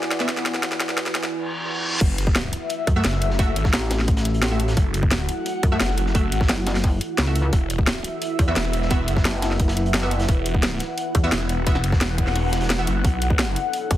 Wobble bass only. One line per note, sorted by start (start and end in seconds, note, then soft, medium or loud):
2.87 3.03 F#2 loud
3.73 4.76 A1 medium
5.63 5.79 F#2 medium
6.49 7.00 F#1 loud
7.18 7.51 C#2 loud
8.39 8.55 E2 medium
9.25 10.27 F#1 loud
11.15 11.31 E2 loud
13.91 13.97 B1 loud